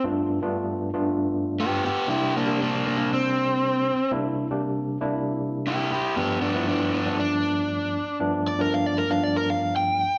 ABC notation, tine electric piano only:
X:1
M:4/4
L:1/16
Q:1/4=118
K:Gmix
V:1 name="Tine electric piano"
[G,,A,B,DF]3 [G,,A,B,DF]4 [G,,A,B,DF]6- [G,,A,B,DF] z2 | [C,G,_B,DE]3 [C,G,B,DG]4 [C,G,B,DG]6- [C,G,B,DG] z2 | [C,G,_B,DE]3 [C,G,B,DG]4 [C,G,B,DE]6- [C,G,B,DE] z2 | [G,,F,A,B,D]3 [G,,F,A,B,E]4 [G,,F,A,B,D]6- [G,,F,A,B,D] z2 |
[G,,F,A,B,D]3 [G,,F,A,B,D]4 [G,,F,A,B,D]6- [G,,F,A,B,D] z2 |]